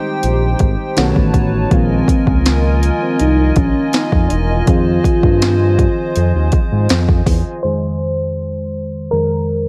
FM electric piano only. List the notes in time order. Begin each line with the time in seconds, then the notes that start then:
Already playing: D#3 G3 G#3 C4 G4
0.96 D#3 A3 B3 C#4 F#4
1.70 D#3 F3 G#3 A#3 F4
4.66 D#3 F3 C4 F4 G#4
7.63 F2 D#3 G#3 C5
9.11 F2 D#3 G#3 A#4